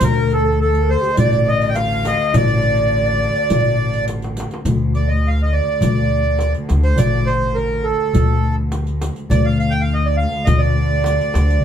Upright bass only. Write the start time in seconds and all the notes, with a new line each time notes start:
0.01 D2
1.18 A1
2.34 A1
3.50 A1
4.65 D2
5.83 D2
6.70 D2
6.99 A1
8.15 D2
9.31 D2
10.47 D2
11.35 D2